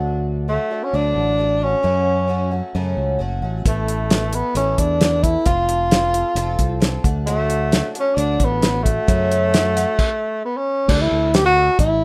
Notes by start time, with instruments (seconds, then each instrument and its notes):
Already playing: fingered electric bass D2, twelve-string acoustic guitar D3 F#3 A3 D4 F#4
0.48 twelve-string acoustic guitar F#3 A3 D4 F#4, tenor saxophone A3
0.70 twelve-string acoustic guitar A3 D4 F#4
0.84 tenor saxophone C#4
0.93 fingered electric bass D2, twelve-string acoustic guitar D3 F#3 A3 D4 F#4, tenor saxophone D4
1.16 fingered electric bass A1
1.38 twelve-string acoustic guitar F#3 A3 D4 F#4
1.60 twelve-string acoustic guitar A3 D4 F#4, tenor saxophone C#4
1.83 twelve-string acoustic guitar F#2 C#3 F#3 A3 C#4 F#4, fingered electric bass F#2
2.28 twelve-string acoustic guitar F#3 A3 C#4 F#4
2.51 twelve-string acoustic guitar F#3 A3 C#4 F#4
2.75 twelve-string acoustic guitar F#2 C#3 F#3 A3 C#4 F#4, fingered electric bass F#2
2.97 fingered electric bass C#2
3.19 fingered electric bass F#1, twelve-string acoustic guitar F#3 A3 C#4 F#4
3.42 fingered electric bass A1, twelve-string acoustic guitar F#3 A3 C#4 F#4
3.65 fingered electric bass A1, twelve-string acoustic guitar A3 B3 E4 A4, tenor saxophone A3, kick, closed hi-hat
3.88 closed hi-hat
4.10 twelve-string acoustic guitar A3 B3 E4 A4, snare, closed hi-hat
4.32 tenor saxophone B3, twelve-string acoustic guitar B3 E4 A4, closed hi-hat
4.55 fingered electric bass A1, twelve-string acoustic guitar A3 B3 E4 A4, tenor saxophone C#4, closed hi-hat
4.78 fingered electric bass E2, tenor saxophone D4, kick, closed hi-hat
5.00 twelve-string acoustic guitar A3 B3 E4 A4, snare, closed hi-hat
5.23 tenor saxophone E4, kick, closed hi-hat
5.46 fingered electric bass F1, twelve-string acoustic guitar F3 C4 F4 A4, tenor saxophone F4, kick, closed hi-hat
5.69 closed hi-hat
5.91 twelve-string acoustic guitar F3 C4 F4 A4, snare, closed hi-hat
6.13 twelve-string acoustic guitar C4 F4 A4, closed hi-hat
6.35 fingered electric bass F1, twelve-string acoustic guitar F3 C4 F4 A4, closed hi-hat
6.59 fingered electric bass C2, kick, closed hi-hat
6.80 twelve-string acoustic guitar F3 C4 F4 A4, snare, closed hi-hat
7.04 fingered electric bass D2, twelve-string acoustic guitar A3 D4 F#4, kick, closed hi-hat
7.26 twelve-string acoustic guitar D3 F#3 A3 D4 F#4, tenor saxophone A3, closed hi-hat
7.50 closed hi-hat
7.71 twelve-string acoustic guitar F#3 A3 D4 F#4, snare, closed hi-hat
7.95 twelve-string acoustic guitar A3 D4 F#4, closed hi-hat
8.00 tenor saxophone C#4
8.15 fingered electric bass D2, twelve-string acoustic guitar D3 F#3 A3 D4 F#4, tenor saxophone D4, closed hi-hat
8.39 fingered electric bass A1, kick, closed hi-hat
8.45 tenor saxophone B3
8.62 twelve-string acoustic guitar F#3 A3 D4 F#4, snare, closed hi-hat
8.83 tenor saxophone A3, twelve-string acoustic guitar F#4, kick, closed hi-hat
8.87 twelve-string acoustic guitar A3 D4
9.07 twelve-string acoustic guitar F#2 C#3 F#3 A3 C#4 F#4, fingered electric bass F#2, kick, closed hi-hat
9.31 closed hi-hat
9.53 twelve-string acoustic guitar F#3 A3 C#4 F#4, snare, closed hi-hat
9.76 twelve-string acoustic guitar F#3 A3 C#4 F#4, snare, closed hi-hat
9.99 kick, crash
10.45 tenor saxophone B3
10.57 tenor saxophone C#4
10.88 fingered electric bass D2, twelve-string acoustic guitar D3 E3 A3 D4 A4, tenor saxophone D4, kick, crash
11.01 tenor saxophone E4
11.11 fingered electric bass D2
11.33 twelve-string acoustic guitar E3 A3 D4 A4, tenor saxophone G4, snare, closed hi-hat
11.46 tenor saxophone F#4
11.56 twelve-string acoustic guitar A3 D4 A4
11.79 fingered electric bass A1, tenor saxophone E4, kick, closed hi-hat